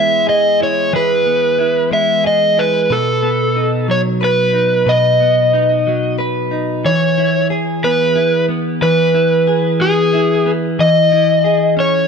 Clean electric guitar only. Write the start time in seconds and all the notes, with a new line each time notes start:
Already playing: E3 G#3 B3 E4 G#4
0.27 G#4
0.60 E4
0.93 E3 G#4
1.26 B3
1.59 E4
1.91 G#3
2.24 G#4
2.57 E4
2.90 B2 B4
3.23 B3
3.56 D#4
3.88 F#3
4.21 B4
4.53 D#4
4.86 B2 B4
5.20 B3
5.53 D#4
5.87 F#3
6.18 B4
6.51 D#4
6.85 E3
7.18 E4
7.50 G#4
7.83 B3
8.16 E4
8.49 B3
8.82 E3
9.14 E4
9.47 G#4
9.80 B3
10.13 E4
10.46 B3
10.79 E3
11.12 E4
11.44 G#4
11.77 C#4